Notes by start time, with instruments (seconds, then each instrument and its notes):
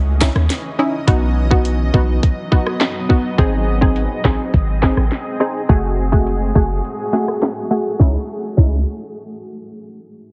Already playing: 808-style bass C#2, ambient pad E3 C#4 D#5
0.21 synth stab C#4 D#4 E4, kick, snare, clap
0.35 808-style bass D#2, cross-stick
0.50 snare, closed hi-hat
0.79 synth stab C#4 D#4 E4
1.07 808-style bass B1, ambient pad F#3 B3, synth stab B3 D#4 F#4, kick, closed hi-hat
1.51 synth stab B3 D#4 F#4, kick
1.65 closed hi-hat
1.94 808-style bass B1, synth stab B3 D#4 F#4, kick
2.23 kick, closed hi-hat
2.52 synth stab B3 D#4 F#4, kick
2.67 cross-stick
2.81 snare, clap, closed hi-hat
3.09 synth stab B3 D#4 F#4, kick
3.38 808-style bass G#1, synth stab C4 D#4 G#4, ambient pad C4 G#4, kick, closed hi-hat
3.81 synth stab C4 D#4 G#4, kick
3.96 closed hi-hat
4.25 808-style bass A1, synth stab C4 D#4 G#4, kick, snare, clap
4.54 808-style bass G#1, kick, closed hi-hat
4.82 synth stab C4 D#4 G#4, kick, snare, clap
4.97 808-style bass A1, cross-stick
5.12 snare, closed hi-hat
5.40 synth stab C4 D#4 G#4
5.69 808-style bass F#1, synth stab A3 F#4 G#4, ambient pad A3 F#4, kick, closed hi-hat
6.12 synth stab A3 F#4 G#4, kick
6.27 closed hi-hat
6.55 808-style bass F#1, synth stab A3 F#4 G#4, kick
6.85 closed hi-hat
7.13 synth stab A3 F#4 G#4, snare
7.28 cross-stick
7.42 snare, clap, closed hi-hat
7.71 synth stab A3 F#4 G#4
8.00 808-style bass C#2, synth stab C#4 D#4 E4, kick, snare
8.57 808-style bass C#2, synth stab C#4 D#4 E4, kick, crash